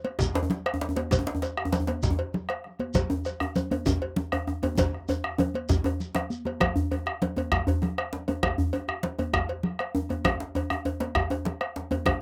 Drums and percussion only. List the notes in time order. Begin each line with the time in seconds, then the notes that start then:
0.04 cowbell, high conga
0.19 bombo low, djembe slap, djembe bass, shekere
0.34 cowbell, djembe slap, djembe tone
0.43 djembe tone
0.50 djembe slap, low conga
0.65 bombo rim, cowbell, high conga
0.74 djembe tone
0.81 bombo rim, djembe slap
0.89 djembe tone
0.96 cowbell, djembe slap, djembe tone, high conga
1.11 bombo rim, bombo low, cowbell, djembe slap, djembe bass, low conga, shekere
1.19 djembe tone
1.27 djembe slap
1.35 djembe tone
1.42 bombo rim, cowbell, djembe slap, shekere
1.57 bombo rim, djembe tone
1.65 djembe tone
1.72 cowbell, djembe slap, high conga, low conga, shekere
1.80 djembe tone
1.87 cowbell, djembe slap, high conga
2.02 bombo low, djembe slap, djembe bass, shekere
2.10 djembe tone
2.19 cowbell, djembe tone
2.34 low conga
2.49 bombo rim, cowbell, high conga
2.64 bombo rim
2.79 cowbell, high conga, djembe tone
2.94 bombo rim, bombo low, cowbell, djembe slap, low conga, djembe bass, shekere
3.10 djembe slap, djembe tone
3.25 bombo rim, cowbell, shekere
3.40 bombo rim, djembe tone
3.56 cowbell, high conga, djembe tone, low conga, shekere
3.71 cowbell, high conga, djembe tone
3.86 bombo low, djembe slap, djembe tone, djembe bass, shekere
4.02 cowbell, djembe tone
4.16 djembe tone, low conga
4.32 bombo rim, cowbell, high conga, djembe tone
4.47 bombo rim, djembe tone
4.63 cowbell, high conga, djembe tone
4.78 bombo low, cowbell, djembe slap, djembe tone, low conga, djembe bass, shekere
4.94 bombo rim
5.08 cowbell, djembe slap, djembe tone, shekere
5.24 bombo rim, djembe tone
5.38 bombo rim, cowbell, djembe tone, low conga
5.54 cowbell, high conga
5.69 bombo low, djembe slap, djembe tone, djembe bass, shekere
5.84 bombo rim, cowbell, djembe tone
6.00 djembe slap, low conga, shekere
6.15 bombo rim, cowbell, djembe slap, low conga
6.30 high conga, shekere
6.45 cowbell, djembe slap, djembe tone, high conga
6.60 bombo rim, bombo low, cowbell, djembe slap, djembe bass, low conga
6.76 djembe bass
6.91 cowbell, djembe slap, djembe tone
7.06 bombo rim, djembe tone
7.22 cowbell, djembe slap, low conga
7.36 cowbell, high conga, djembe tone
7.52 bombo rim, bombo low, djembe slap, djembe bass
7.67 cowbell, djembe tone, djembe bass
7.82 djembe tone, low conga
7.98 bombo rim, cowbell, high conga
8.13 djembe slap
8.28 cowbell, djembe slap, djembe tone, high conga
8.43 bombo rim, bombo low, cowbell, djembe slap, djembe bass, low conga
8.58 djembe bass
8.73 cowbell, djembe slap, djembe tone
8.88 bombo rim, djembe tone
9.03 cowbell, djembe slap, low conga
9.19 cowbell, djembe tone, high conga
9.33 bombo rim, bombo low, djembe slap, djembe bass
9.49 cowbell, djembe tone
9.63 low conga
9.79 bombo rim, cowbell, high conga
9.95 djembe tone
10.09 cowbell, djembe slap, djembe tone, high conga
10.25 bombo rim, bombo low, cowbell, djembe slap, djembe tone, djembe bass, low conga
10.40 djembe slap
10.55 cowbell, djembe slap, djembe tone
10.70 bombo rim, djembe tone
10.85 cowbell, djembe tone
11.00 cowbell, djembe slap, high conga
11.15 bombo rim, bombo low, djembe slap, djembe bass
11.30 cowbell, djembe tone
11.45 djembe slap, low conga
11.61 bombo rim, cowbell, high conga
11.76 djembe slap
11.91 cowbell, djembe slap, high conga, djembe tone
12.06 bombo rim, bombo low, cowbell, djembe slap, djembe tone, low conga, djembe bass